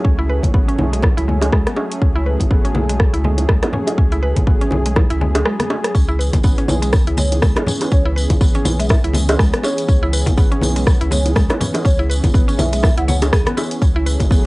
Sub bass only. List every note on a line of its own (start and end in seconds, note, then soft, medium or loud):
0.05 0.40 C#2 medium
0.44 0.76 G#1 medium
0.79 1.14 B1 loud
1.18 1.50 C#2 medium
1.52 1.64 C#2 loud
2.02 2.37 C#2 medium
2.40 2.73 G#1 medium
2.75 3.10 B1 medium
3.14 3.46 C#2 medium
3.49 3.61 C#2 loud
3.98 4.33 C#2 medium
4.37 4.69 G#1 medium
4.72 5.07 B1 loud
5.11 5.43 C#2 medium
5.95 6.30 C#2 medium
6.33 6.66 G#1 medium
6.69 7.04 B1 medium
7.08 7.40 C#2 medium
7.43 7.54 C#2 loud
7.92 8.27 C#2 loud
8.30 8.63 G#1 medium
8.66 9.01 B1 medium
9.04 9.37 C#2 loud
9.39 9.51 C#2 loud
9.89 10.24 C#2 loud
10.27 10.60 G#1 medium
10.62 10.97 B1 medium
11.01 11.33 C#2 loud
11.36 11.48 C#2 loud
11.85 12.20 C#2 loud
12.24 12.56 G#1 medium
12.59 12.94 B1 medium
12.98 13.30 C#2 medium
13.33 13.45 C#2 loud
13.82 14.17 C#2 medium
14.20 14.46 G#1 medium